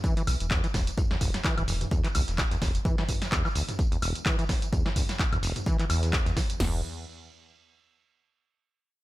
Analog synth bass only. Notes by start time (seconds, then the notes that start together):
0.27 B1
0.40 E1
0.74 E1
1.21 E1
1.58 D1
1.68 E1
2.15 B1
2.28 E1
2.62 E1
6.60 E1